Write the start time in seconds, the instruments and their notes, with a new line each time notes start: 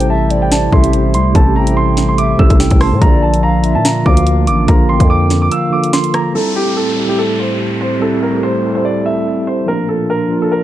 Already playing: 808-style bass A1, tine electric piano C3 G3 A3 E4 A4, analog synth pad A3 E4 G4 C5
0.00 closed hi-hat
0.10 soft synth lead E5, grand piano A5
0.30 soft synth lead D5, closed hi-hat
0.42 grand piano G5
0.52 grand piano A5, snare, closed hi-hat
0.70 808-style bass A1, tine electric piano C3 G3 A3 E4, soft synth lead E5, grand piano C6, kick
0.75 tine electric piano A4
0.84 closed hi-hat
0.93 closed hi-hat
1.14 808-style bass C2, grand piano C6, closed hi-hat
1.33 808-style bass A1, tine electric piano C3 G3 A3 E4, grand piano A5, kick, closed hi-hat
1.37 tine electric piano A4
1.56 soft synth lead G5, grand piano A#5
1.67 closed hi-hat
1.77 grand piano C6
1.97 snare, closed hi-hat
2.08 grand piano C6
2.18 soft synth lead E5, grand piano D6, closed hi-hat
2.37 808-style bass A1, tine electric piano C3 G3 A3 E4, grand piano E6, kick
2.41 tine electric piano A4
2.50 808-style bass A1, kick, closed hi-hat
2.60 soft synth lead G5, snare
2.71 808-style bass A1, kick, closed hi-hat
2.81 soft synth lead A5, grand piano C6, cross-stick, open hi-hat
2.92 808-style bass A2
2.99 808-style bass A#1, tine electric piano D3 F3 A#3 F4, analog synth pad A#3 D4 F4, soft synth lead D5, grand piano A#5, kick, closed hi-hat
3.04 tine electric piano A#4
3.22 grand piano A5
3.34 closed hi-hat
3.43 soft synth lead F5, grand piano A#5
3.64 soft synth lead E5, closed hi-hat
3.75 808-style bass A#2, grand piano A5
3.85 grand piano A#5, snare, closed hi-hat
4.03 808-style bass D2, tine electric piano D3 F3 A#3 F4, soft synth lead F5, grand piano D6, kick
4.08 tine electric piano A#4
4.17 closed hi-hat
4.27 closed hi-hat
4.47 808-style bass A1, grand piano D6, closed hi-hat
4.66 808-style bass A#1, tine electric piano D3 F3 A#3 F4, grand piano A#5, kick, closed hi-hat
4.70 tine electric piano A#4
4.89 808-style bass A1, soft synth lead G5, grand piano C6
5.00 808-style bass F2, kick, closed hi-hat
5.10 grand piano D6
5.30 snare, closed hi-hat
5.42 grand piano D6
5.51 soft synth lead F5, grand piano E6, closed hi-hat
5.70 tine electric piano D3 F3 A#3 F4, grand piano D6
5.75 tine electric piano A4
5.84 closed hi-hat
5.93 grand piano C6, snare
6.04 closed hi-hat
6.14 grand piano A#5, cross-stick, closed hi-hat
6.33 analog synth pad A2 A3 C4 G4, tine electric piano G3 C4 E4, grand piano A4, downlifter
6.37 tine electric piano A4
6.56 grand piano G4
6.77 grand piano A4
6.95 tine electric piano G3 C4 E4
7.00 tine electric piano G4
7.06 tine electric piano G3 C4 E4, grand piano G4
7.11 tine electric piano A4
7.18 grand piano A4
7.39 grand piano C5
7.81 grand piano C5
7.99 tine electric piano G3 C4 E4, grand piano A4
8.04 tine electric piano A4
8.23 grand piano A#4
8.31 tine electric piano G3 C4
8.35 tine electric piano A4
8.43 grand piano C5
8.62 tine electric piano G3 C4 E4
8.66 tine electric piano A4
8.73 tine electric piano G3 C4 E4, grand piano C5
8.77 tine electric piano A4
8.85 grand piano D5
9.04 tine electric piano G3 C4 E4, grand piano E5
9.08 tine electric piano A4
9.47 grand piano C5
9.66 analog synth pad A#2 A#3 D4 F4, tine electric piano F3 A#3 D4, grand piano A#4
9.70 tine electric piano A#4
9.89 grand piano A4
10.10 grand piano A#4
10.29 tine electric piano F3 A#3 D4
10.33 tine electric piano A#4
10.39 tine electric piano F3 A#3 D4, grand piano A4
10.44 tine electric piano A#4
10.52 grand piano A#4